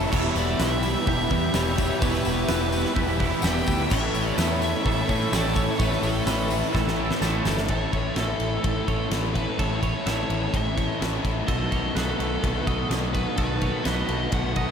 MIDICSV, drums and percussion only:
0, 0, Header, 1, 2, 480
1, 0, Start_track
1, 0, Tempo, 473560
1, 122, Time_signature, 4, 2, 24, 8
1, 14911, End_track
2, 0, Start_track
2, 0, Title_t, "Drums"
2, 119, Note_on_c, 9, 54, 62
2, 129, Note_on_c, 9, 36, 118
2, 134, Note_on_c, 9, 49, 114
2, 220, Note_off_c, 9, 54, 0
2, 230, Note_off_c, 9, 36, 0
2, 235, Note_off_c, 9, 49, 0
2, 361, Note_on_c, 9, 54, 64
2, 367, Note_on_c, 9, 46, 57
2, 462, Note_off_c, 9, 54, 0
2, 469, Note_off_c, 9, 46, 0
2, 602, Note_on_c, 9, 46, 84
2, 605, Note_on_c, 9, 38, 109
2, 607, Note_on_c, 9, 54, 82
2, 703, Note_off_c, 9, 46, 0
2, 706, Note_off_c, 9, 38, 0
2, 708, Note_off_c, 9, 54, 0
2, 839, Note_on_c, 9, 54, 66
2, 842, Note_on_c, 9, 46, 61
2, 940, Note_off_c, 9, 54, 0
2, 943, Note_off_c, 9, 46, 0
2, 1083, Note_on_c, 9, 46, 86
2, 1087, Note_on_c, 9, 36, 93
2, 1185, Note_off_c, 9, 46, 0
2, 1188, Note_off_c, 9, 36, 0
2, 1322, Note_on_c, 9, 46, 64
2, 1326, Note_on_c, 9, 36, 86
2, 1424, Note_off_c, 9, 46, 0
2, 1428, Note_off_c, 9, 36, 0
2, 1558, Note_on_c, 9, 46, 93
2, 1561, Note_on_c, 9, 38, 115
2, 1564, Note_on_c, 9, 54, 88
2, 1659, Note_off_c, 9, 46, 0
2, 1662, Note_off_c, 9, 38, 0
2, 1665, Note_off_c, 9, 54, 0
2, 1804, Note_on_c, 9, 54, 73
2, 1807, Note_on_c, 9, 46, 65
2, 1808, Note_on_c, 9, 36, 96
2, 1905, Note_off_c, 9, 54, 0
2, 1909, Note_off_c, 9, 46, 0
2, 1910, Note_off_c, 9, 36, 0
2, 2044, Note_on_c, 9, 54, 75
2, 2045, Note_on_c, 9, 46, 100
2, 2048, Note_on_c, 9, 36, 127
2, 2145, Note_off_c, 9, 54, 0
2, 2146, Note_off_c, 9, 46, 0
2, 2150, Note_off_c, 9, 36, 0
2, 2172, Note_on_c, 9, 38, 32
2, 2274, Note_off_c, 9, 38, 0
2, 2280, Note_on_c, 9, 54, 70
2, 2291, Note_on_c, 9, 46, 68
2, 2381, Note_off_c, 9, 54, 0
2, 2393, Note_off_c, 9, 46, 0
2, 2516, Note_on_c, 9, 46, 90
2, 2519, Note_on_c, 9, 54, 92
2, 2520, Note_on_c, 9, 38, 123
2, 2618, Note_off_c, 9, 46, 0
2, 2620, Note_off_c, 9, 54, 0
2, 2621, Note_off_c, 9, 38, 0
2, 2761, Note_on_c, 9, 54, 72
2, 2762, Note_on_c, 9, 46, 64
2, 2862, Note_off_c, 9, 54, 0
2, 2863, Note_off_c, 9, 46, 0
2, 2888, Note_on_c, 9, 38, 34
2, 2989, Note_off_c, 9, 38, 0
2, 2994, Note_on_c, 9, 46, 87
2, 3005, Note_on_c, 9, 36, 95
2, 3096, Note_off_c, 9, 46, 0
2, 3106, Note_off_c, 9, 36, 0
2, 3242, Note_on_c, 9, 46, 70
2, 3246, Note_on_c, 9, 36, 91
2, 3343, Note_off_c, 9, 46, 0
2, 3347, Note_off_c, 9, 36, 0
2, 3466, Note_on_c, 9, 54, 95
2, 3487, Note_on_c, 9, 46, 94
2, 3490, Note_on_c, 9, 38, 122
2, 3567, Note_off_c, 9, 54, 0
2, 3588, Note_off_c, 9, 46, 0
2, 3591, Note_off_c, 9, 38, 0
2, 3714, Note_on_c, 9, 54, 75
2, 3726, Note_on_c, 9, 46, 63
2, 3727, Note_on_c, 9, 36, 84
2, 3816, Note_off_c, 9, 54, 0
2, 3827, Note_off_c, 9, 46, 0
2, 3828, Note_off_c, 9, 36, 0
2, 3953, Note_on_c, 9, 54, 75
2, 3968, Note_on_c, 9, 36, 122
2, 3968, Note_on_c, 9, 57, 108
2, 4054, Note_off_c, 9, 54, 0
2, 4069, Note_off_c, 9, 36, 0
2, 4069, Note_off_c, 9, 57, 0
2, 4201, Note_on_c, 9, 54, 73
2, 4209, Note_on_c, 9, 46, 63
2, 4302, Note_off_c, 9, 54, 0
2, 4310, Note_off_c, 9, 46, 0
2, 4439, Note_on_c, 9, 54, 96
2, 4444, Note_on_c, 9, 46, 86
2, 4447, Note_on_c, 9, 38, 119
2, 4540, Note_off_c, 9, 54, 0
2, 4546, Note_off_c, 9, 46, 0
2, 4549, Note_off_c, 9, 38, 0
2, 4679, Note_on_c, 9, 54, 75
2, 4690, Note_on_c, 9, 46, 61
2, 4781, Note_off_c, 9, 54, 0
2, 4792, Note_off_c, 9, 46, 0
2, 4923, Note_on_c, 9, 36, 94
2, 4926, Note_on_c, 9, 46, 87
2, 5024, Note_off_c, 9, 36, 0
2, 5027, Note_off_c, 9, 46, 0
2, 5161, Note_on_c, 9, 46, 68
2, 5162, Note_on_c, 9, 36, 88
2, 5262, Note_off_c, 9, 46, 0
2, 5263, Note_off_c, 9, 36, 0
2, 5400, Note_on_c, 9, 54, 91
2, 5401, Note_on_c, 9, 46, 88
2, 5405, Note_on_c, 9, 38, 118
2, 5502, Note_off_c, 9, 54, 0
2, 5503, Note_off_c, 9, 46, 0
2, 5506, Note_off_c, 9, 38, 0
2, 5631, Note_on_c, 9, 54, 75
2, 5637, Note_on_c, 9, 46, 64
2, 5639, Note_on_c, 9, 36, 93
2, 5733, Note_off_c, 9, 54, 0
2, 5738, Note_off_c, 9, 46, 0
2, 5740, Note_off_c, 9, 36, 0
2, 5871, Note_on_c, 9, 54, 70
2, 5873, Note_on_c, 9, 46, 90
2, 5877, Note_on_c, 9, 36, 123
2, 5972, Note_off_c, 9, 54, 0
2, 5975, Note_off_c, 9, 46, 0
2, 5978, Note_off_c, 9, 36, 0
2, 6002, Note_on_c, 9, 38, 32
2, 6103, Note_off_c, 9, 38, 0
2, 6111, Note_on_c, 9, 54, 75
2, 6115, Note_on_c, 9, 46, 69
2, 6213, Note_off_c, 9, 54, 0
2, 6217, Note_off_c, 9, 46, 0
2, 6352, Note_on_c, 9, 46, 90
2, 6355, Note_on_c, 9, 38, 114
2, 6359, Note_on_c, 9, 54, 92
2, 6453, Note_off_c, 9, 46, 0
2, 6456, Note_off_c, 9, 38, 0
2, 6460, Note_off_c, 9, 54, 0
2, 6593, Note_on_c, 9, 54, 72
2, 6599, Note_on_c, 9, 46, 66
2, 6694, Note_off_c, 9, 54, 0
2, 6700, Note_off_c, 9, 46, 0
2, 6829, Note_on_c, 9, 54, 29
2, 6839, Note_on_c, 9, 36, 88
2, 6843, Note_on_c, 9, 38, 70
2, 6930, Note_off_c, 9, 54, 0
2, 6940, Note_off_c, 9, 36, 0
2, 6944, Note_off_c, 9, 38, 0
2, 6968, Note_on_c, 9, 38, 60
2, 7070, Note_off_c, 9, 38, 0
2, 7202, Note_on_c, 9, 38, 79
2, 7303, Note_off_c, 9, 38, 0
2, 7316, Note_on_c, 9, 54, 92
2, 7322, Note_on_c, 9, 38, 95
2, 7418, Note_off_c, 9, 54, 0
2, 7423, Note_off_c, 9, 38, 0
2, 7555, Note_on_c, 9, 38, 105
2, 7555, Note_on_c, 9, 54, 78
2, 7657, Note_off_c, 9, 38, 0
2, 7657, Note_off_c, 9, 54, 0
2, 7676, Note_on_c, 9, 38, 97
2, 7778, Note_off_c, 9, 38, 0
2, 7788, Note_on_c, 9, 51, 84
2, 7796, Note_on_c, 9, 36, 99
2, 7889, Note_off_c, 9, 51, 0
2, 7898, Note_off_c, 9, 36, 0
2, 8038, Note_on_c, 9, 51, 60
2, 8039, Note_on_c, 9, 36, 73
2, 8140, Note_off_c, 9, 36, 0
2, 8140, Note_off_c, 9, 51, 0
2, 8271, Note_on_c, 9, 51, 78
2, 8274, Note_on_c, 9, 38, 101
2, 8372, Note_off_c, 9, 51, 0
2, 8375, Note_off_c, 9, 38, 0
2, 8512, Note_on_c, 9, 51, 59
2, 8614, Note_off_c, 9, 51, 0
2, 8757, Note_on_c, 9, 51, 80
2, 8761, Note_on_c, 9, 36, 97
2, 8858, Note_off_c, 9, 51, 0
2, 8863, Note_off_c, 9, 36, 0
2, 9001, Note_on_c, 9, 36, 80
2, 9002, Note_on_c, 9, 51, 58
2, 9103, Note_off_c, 9, 36, 0
2, 9104, Note_off_c, 9, 51, 0
2, 9238, Note_on_c, 9, 51, 88
2, 9241, Note_on_c, 9, 38, 106
2, 9339, Note_off_c, 9, 51, 0
2, 9342, Note_off_c, 9, 38, 0
2, 9482, Note_on_c, 9, 36, 81
2, 9483, Note_on_c, 9, 51, 59
2, 9583, Note_off_c, 9, 36, 0
2, 9584, Note_off_c, 9, 51, 0
2, 9723, Note_on_c, 9, 36, 101
2, 9724, Note_on_c, 9, 51, 88
2, 9825, Note_off_c, 9, 36, 0
2, 9825, Note_off_c, 9, 51, 0
2, 9961, Note_on_c, 9, 36, 67
2, 9964, Note_on_c, 9, 51, 66
2, 10062, Note_off_c, 9, 36, 0
2, 10065, Note_off_c, 9, 51, 0
2, 10202, Note_on_c, 9, 51, 84
2, 10206, Note_on_c, 9, 38, 106
2, 10304, Note_off_c, 9, 51, 0
2, 10307, Note_off_c, 9, 38, 0
2, 10441, Note_on_c, 9, 51, 64
2, 10542, Note_off_c, 9, 51, 0
2, 10680, Note_on_c, 9, 36, 96
2, 10683, Note_on_c, 9, 51, 84
2, 10782, Note_off_c, 9, 36, 0
2, 10784, Note_off_c, 9, 51, 0
2, 10922, Note_on_c, 9, 36, 81
2, 10927, Note_on_c, 9, 51, 64
2, 11024, Note_off_c, 9, 36, 0
2, 11028, Note_off_c, 9, 51, 0
2, 11170, Note_on_c, 9, 51, 86
2, 11173, Note_on_c, 9, 38, 102
2, 11272, Note_off_c, 9, 51, 0
2, 11275, Note_off_c, 9, 38, 0
2, 11400, Note_on_c, 9, 36, 79
2, 11403, Note_on_c, 9, 51, 64
2, 11501, Note_off_c, 9, 36, 0
2, 11504, Note_off_c, 9, 51, 0
2, 11640, Note_on_c, 9, 36, 104
2, 11640, Note_on_c, 9, 51, 88
2, 11741, Note_off_c, 9, 36, 0
2, 11742, Note_off_c, 9, 51, 0
2, 11879, Note_on_c, 9, 51, 63
2, 11880, Note_on_c, 9, 36, 71
2, 11980, Note_off_c, 9, 51, 0
2, 11982, Note_off_c, 9, 36, 0
2, 12127, Note_on_c, 9, 51, 75
2, 12130, Note_on_c, 9, 38, 102
2, 12229, Note_off_c, 9, 51, 0
2, 12232, Note_off_c, 9, 38, 0
2, 12367, Note_on_c, 9, 51, 62
2, 12468, Note_off_c, 9, 51, 0
2, 12607, Note_on_c, 9, 36, 99
2, 12612, Note_on_c, 9, 51, 82
2, 12708, Note_off_c, 9, 36, 0
2, 12713, Note_off_c, 9, 51, 0
2, 12846, Note_on_c, 9, 36, 82
2, 12848, Note_on_c, 9, 51, 62
2, 12947, Note_off_c, 9, 36, 0
2, 12949, Note_off_c, 9, 51, 0
2, 13085, Note_on_c, 9, 51, 82
2, 13088, Note_on_c, 9, 38, 105
2, 13186, Note_off_c, 9, 51, 0
2, 13189, Note_off_c, 9, 38, 0
2, 13325, Note_on_c, 9, 36, 83
2, 13326, Note_on_c, 9, 51, 63
2, 13426, Note_off_c, 9, 36, 0
2, 13427, Note_off_c, 9, 51, 0
2, 13557, Note_on_c, 9, 51, 89
2, 13564, Note_on_c, 9, 36, 99
2, 13659, Note_off_c, 9, 51, 0
2, 13665, Note_off_c, 9, 36, 0
2, 13800, Note_on_c, 9, 51, 63
2, 13803, Note_on_c, 9, 36, 75
2, 13901, Note_off_c, 9, 51, 0
2, 13905, Note_off_c, 9, 36, 0
2, 14040, Note_on_c, 9, 51, 86
2, 14043, Note_on_c, 9, 38, 103
2, 14141, Note_off_c, 9, 51, 0
2, 14144, Note_off_c, 9, 38, 0
2, 14278, Note_on_c, 9, 51, 63
2, 14379, Note_off_c, 9, 51, 0
2, 14514, Note_on_c, 9, 51, 84
2, 14520, Note_on_c, 9, 36, 99
2, 14616, Note_off_c, 9, 51, 0
2, 14622, Note_off_c, 9, 36, 0
2, 14756, Note_on_c, 9, 51, 65
2, 14761, Note_on_c, 9, 36, 83
2, 14858, Note_off_c, 9, 51, 0
2, 14862, Note_off_c, 9, 36, 0
2, 14911, End_track
0, 0, End_of_file